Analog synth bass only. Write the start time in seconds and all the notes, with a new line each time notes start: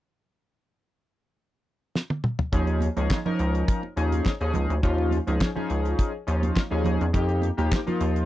2.53 D#2
2.97 C#2
3.40 C#2
3.97 D#2
4.41 D#2
4.55 C#2
4.70 D2
4.83 D#2
5.28 C#2
5.70 C#2
6.28 D#2
6.72 D#2
6.86 D#2
7.01 E2
7.14 F2
7.58 D#2
8.01 D#2